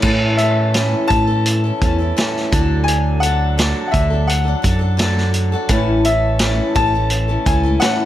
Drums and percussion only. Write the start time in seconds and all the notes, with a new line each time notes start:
0.02 kick, crash
0.38 closed hi-hat
0.74 snare, closed hi-hat
1.10 kick, closed hi-hat
1.46 closed hi-hat
1.81 kick, closed hi-hat
2.18 snare, closed hi-hat
2.36 snare
2.53 kick, closed hi-hat
2.88 closed hi-hat
3.23 closed hi-hat
3.59 snare, closed hi-hat
3.94 kick, closed hi-hat
4.29 closed hi-hat
4.64 kick, closed hi-hat
4.99 snare, closed hi-hat
5.18 snare
5.34 closed hi-hat
5.69 kick, closed hi-hat
6.05 closed hi-hat
6.39 snare, closed hi-hat
6.75 kick, closed hi-hat
7.10 closed hi-hat
7.46 kick, closed hi-hat
7.81 snare, closed hi-hat